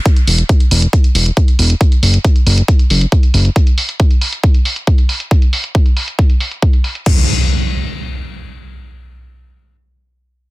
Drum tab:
CC |----------------|----------------|----------------|----------------|
HH |xxoxxxoxxxoxxxox|xxoxxxoxxxoxxxox|xxoxxxoxxxoxxxox|xxoxxxoxxxoxxxox|
BD |o---o---o---o---|o---o---o---o---|o---o---o---o---|o---o---o---o---|

CC |x---------------|----------------|
HH |----------------|----------------|
BD |o---------------|----------------|